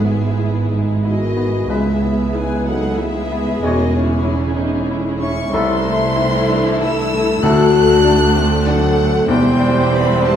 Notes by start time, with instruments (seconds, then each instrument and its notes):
Already playing: double bass section G#1, grand piano G#2, cello section G#2, viola section G#3 B3, violin section E4 G#4
0.05 french horn section E3, grand piano B3, flute G#4, violin section E5
0.39 grand piano E4
0.72 grand piano D#4
1.04 french horn section D#3, grand piano E4, flute F#4, violin section D#5
1.37 grand piano B3
1.69 grand piano C#2, double bass section C#2, cello section C#2, french horn section E3, bassoon G#3, viola section G#3 B3, violin section E4 G#4 E5, clarinet G#4, flute G#4, oboe B4
2.02 grand piano B3
2.33 french horn section G#3, grand piano E4, flute B4, violin section G#5
2.64 french horn section F#3, grand piano D#4, violin section F#5
2.69 flute A4
2.98 french horn section E3, grand piano E4, flute G#4, violin section E5
3.32 grand piano B3
3.62 double bass section E1, cello section E2, grand piano E2, french horn section D#3, bassoon G#3, viola section C#4, flute F#4, clarinet G#4, oboe C#5, violin section D#5
3.94 french horn section C#3, grand piano C#4, flute E4, violin section C#5
4.25 grand piano E4
4.57 grand piano D#4
4.91 grand piano E4
5.20 french horn section C#4, grand piano C#4, flute E5, violin section C#6
5.50 double bass section C2, cello section C2, grand piano C2, viola section E3 A3, bassoon A3, french horn section C4, violin section E4 A4 C6, clarinet E4, flute E5
5.54 oboe A4
5.86 grand piano A3
6.16 grand piano E4
6.48 grand piano D4
6.79 french horn section E4, grand piano E4, flute A5, violin section E6
7.13 grand piano A3
7.42 grand piano D2, double bass section D2, cello section D2, timpani D3, viola section A3, bassoon A3, violin section D4 F#6, clarinet D4, french horn section F#4, oboe A4, flute A5
7.76 grand piano A3
8.04 grand piano D4
8.36 grand piano C4
8.66 french horn section F#3, grand piano D4, flute A4, violin section F#5
8.97 grand piano A3
9.27 double bass section E1, grand piano E2, cello section E2, viola section G3 C4, french horn section G3, bassoon G3, violin section C4 E4 G5, clarinet C4, flute C5, oboe C5
9.59 grand piano G3
9.91 french horn section B3, grand piano C4, flute D5, violin section B5
10.23 french horn section A3, grand piano B3, flute C5, violin section A5